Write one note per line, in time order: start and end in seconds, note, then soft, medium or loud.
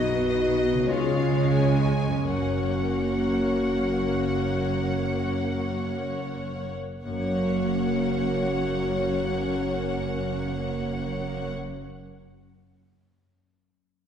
0.00 0.90 B1 soft
0.00 0.86 B2 soft
0.00 0.90 B2 medium
0.00 0.86 B3 soft
0.00 0.88 B3 soft
0.00 0.89 B3 medium
0.00 0.89 D#4 medium
0.00 0.90 F#4 soft
0.00 0.91 F#4 medium
0.00 0.28 D#5 medium
0.00 0.89 D#5 medium
0.00 0.92 D#5 soft
0.29 0.88 D#5 medium
0.72 2.21 C#3 soft
0.76 2.23 G#3 soft
0.81 2.13 C#4 soft
0.86 2.23 G#3 soft
0.86 2.24 G#3 soft
0.86 6.55 C#4 soft
0.86 1.86 F4 medium
0.86 2.18 C#5 soft
0.86 2.23 C#5 soft
0.90 2.24 C#2 soft
0.90 2.24 C#3 medium
0.90 1.53 F5 soft
1.55 2.25 G#5 soft
2.06 5.96 F#2 soft
2.10 6.00 A#3 soft
2.15 6.05 C#4 soft
2.20 6.74 F#2 soft
2.20 6.51 A#3 soft
2.20 6.74 A#3 soft
2.20 6.10 C#5 soft
2.20 6.70 C#5 soft
2.24 6.75 F#1 soft
2.24 6.17 F#4 medium
2.24 6.76 F#5 soft
7.04 11.53 F#1 soft
7.04 11.52 F#2 soft
7.04 11.53 F#2 soft
7.04 11.51 A#3 soft
7.04 11.52 A#3 soft
7.04 11.52 C#4 soft
7.04 11.52 F#4 medium
7.04 11.51 C#5 soft
7.04 11.53 F#5 soft
7.13 11.60 F#3 soft
7.20 11.67 A#3 soft
7.26 11.74 C#4 soft
7.33 11.81 C#5 soft